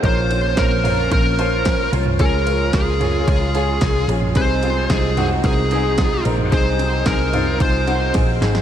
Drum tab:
RD |x-x-x-x-x-x-x-x-|x-x-x-x-x-x-x-x-|x-x-x-x-x-x-x-x-|x-x-x-x-x-x-x-x-|
SD |----o-------o---|----o-------o---|----o-------o---|----o-------o-oo|
FT |------o--------o|------o--------o|------o--------o|------o---------|
BD |o---o---o---o---|o---o---o---o---|o---o---o---o---|o---o---o---o---|